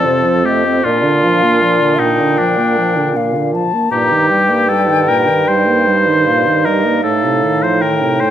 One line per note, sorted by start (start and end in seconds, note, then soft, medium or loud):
0.00 0.81 F2 medium
0.00 0.87 C4 medium
0.00 0.47 A4 medium
0.05 0.26 C3 medium
0.05 0.45 C5 medium
0.25 0.46 F3 soft
0.44 0.66 A3 medium
0.44 0.86 G4 medium
0.44 0.87 D#5 medium
0.65 0.84 C4 medium
0.84 1.05 A#2 medium
0.84 3.63 A#2 medium
0.84 3.67 D4 medium
0.84 2.01 F4 medium
0.84 1.23 D5 medium
1.04 1.25 D3 medium
1.24 1.45 F3 medium
1.24 1.62 F5 medium
1.43 1.63 A#3 medium
1.62 1.83 F3 medium
1.62 2.02 D5 medium
1.81 2.02 D3 soft
1.99 2.22 A#2 medium
1.99 2.39 D#4 medium
1.99 3.18 G5 medium
2.20 2.39 D3 medium
2.37 2.59 F3 medium
2.37 3.16 D4 medium
2.58 2.79 A#3 medium
2.78 2.98 F3 medium
2.97 3.18 D3 medium
3.16 3.37 A#2 medium
3.16 3.54 F5 medium
3.35 3.56 D3 medium
3.54 3.75 F3 medium
3.54 3.93 A5 medium
3.74 3.91 A#3 medium
3.91 7.00 G2 medium
3.91 4.13 A#2 medium
3.91 8.30 D#4 medium
3.91 4.70 G4 medium
3.91 4.28 A#5 medium
4.12 4.32 D#3 medium
4.29 4.51 G3 medium
4.29 5.97 G5 medium
4.50 4.71 A#3 medium
4.69 4.90 G3 medium
4.69 5.10 A4 medium
4.89 5.10 D#3 medium
5.08 5.30 A#2 medium
5.08 5.50 A#4 medium
5.28 5.47 D#3 medium
5.48 5.69 G3 medium
5.48 6.67 C5 medium
5.68 5.89 A#3 medium
5.88 6.09 G3 medium
6.08 6.29 D#3 soft
6.27 6.48 A#2 medium
6.27 6.66 F5 medium
6.47 6.68 D#3 medium
6.65 6.87 G3 soft
6.65 7.03 A#4 medium
6.65 7.04 D#5 medium
6.86 7.04 A#3 medium
7.02 8.30 A2 medium
7.02 7.26 A2 medium
7.02 7.64 A4 medium
7.02 7.82 F5 medium
7.24 7.44 C3 medium
7.43 7.65 D#3 soft
7.63 7.85 F3 soft
7.63 7.83 C5 medium
7.81 8.04 D#3 medium
7.81 8.22 A#4 medium
7.81 8.30 G5 medium
8.03 8.23 C3 soft
8.20 8.30 A2 soft
8.20 8.30 C5 medium